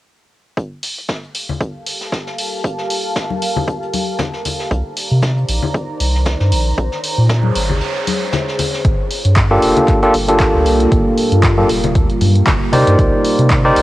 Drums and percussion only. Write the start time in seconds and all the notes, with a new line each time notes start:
0.57 kick, closed hi-hat
0.83 closed hi-hat, open hi-hat
0.98 closed hi-hat
1.08 kick, snare, closed hi-hat
1.23 closed hi-hat
1.34 closed hi-hat, open hi-hat
1.49 low conga
1.60 kick, closed hi-hat
1.86 closed hi-hat, open hi-hat
2.01 snare
2.12 kick, snare, closed hi-hat
2.27 snare
2.38 open hi-hat
2.64 kick, closed hi-hat
2.78 snare
2.90 closed hi-hat, open hi-hat
3.15 kick, snare, closed hi-hat
3.30 high conga
3.42 closed hi-hat, open hi-hat
3.56 low conga
3.67 kick, closed hi-hat
3.82 closed hi-hat
3.93 closed hi-hat, open hi-hat, high conga
4.18 kick, snare, closed hi-hat, low conga
4.33 snare
4.45 closed hi-hat, open hi-hat, low conga
4.59 snare
4.71 kick, closed hi-hat
4.97 closed hi-hat, open hi-hat
5.10 closed hi-hat
5.22 kick, snare, closed hi-hat
5.37 closed hi-hat
5.48 closed hi-hat, open hi-hat
5.63 low conga
5.74 kick, closed hi-hat
6.00 closed hi-hat, open hi-hat
6.15 snare
6.25 kick, snare, closed hi-hat
6.40 snare
6.52 open hi-hat
6.78 kick, closed hi-hat
6.92 snare
7.03 closed hi-hat, open hi-hat
7.29 kick, snare, closed hi-hat
7.43 high conga
7.55 closed hi-hat, open hi-hat
7.70 low conga
7.81 closed hi-hat
7.96 closed hi-hat
8.07 closed hi-hat, open hi-hat, high conga
8.32 snare, closed hi-hat, low conga
8.48 snare
8.59 closed hi-hat, open hi-hat, low conga
8.73 snare
8.85 kick, closed hi-hat
9.11 open hi-hat
9.25 closed hi-hat
9.36 kick, clap, closed hi-hat
9.62 open hi-hat
9.77 closed hi-hat, low conga
9.88 kick, clap, closed hi-hat
10.03 closed hi-hat
10.14 open hi-hat
10.29 closed hi-hat
10.40 kick, clap, closed hi-hat
10.66 open hi-hat
10.80 closed hi-hat
10.92 kick, closed hi-hat
11.18 open hi-hat
11.32 closed hi-hat
11.43 kick, clap, closed hi-hat
11.57 high conga
11.69 open hi-hat
11.84 closed hi-hat, low conga
11.95 kick, closed hi-hat
12.10 closed hi-hat
12.21 open hi-hat, high conga
12.36 closed hi-hat
12.47 kick, clap, closed hi-hat, low conga
12.73 open hi-hat, low conga
12.87 closed hi-hat
12.99 kick, closed hi-hat
13.25 open hi-hat
13.39 closed hi-hat
13.50 kick, clap, closed hi-hat
13.76 open hi-hat